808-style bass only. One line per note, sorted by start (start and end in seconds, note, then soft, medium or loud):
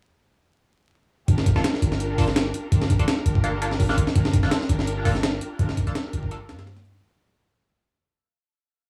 1.28 1.54 G1 loud
1.56 1.63 G1 loud
1.82 2.53 G1 loud
2.72 2.98 G1 loud
2.99 3.07 G1 loud
3.26 3.96 G1 loud
3.98 4.06 G1 loud
4.16 4.42 G1 loud
4.43 4.51 G1 loud
4.69 5.40 G1 loud
5.59 5.85 G1 loud
5.87 5.94 G1 loud
6.13 6.51 G1 loud
6.49 7.02 G2 medium